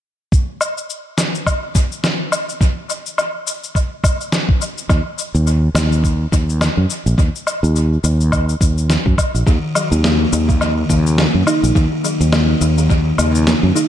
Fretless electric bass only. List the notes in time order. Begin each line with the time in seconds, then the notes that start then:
4.90 D#2
5.35 D#2
5.75 D#2
6.32 D#2
6.77 F#2
7.06 A#1
7.18 D#2
7.63 D#2
8.04 D#2
8.61 D#2
9.06 F#2
9.34 A#1
9.47 D#2
9.92 D#2
10.33 D#2
10.90 D#2
11.34 F#2
11.63 A#1
11.75 D#2
12.21 D#2
12.61 D#2
13.19 D#2
13.63 F#2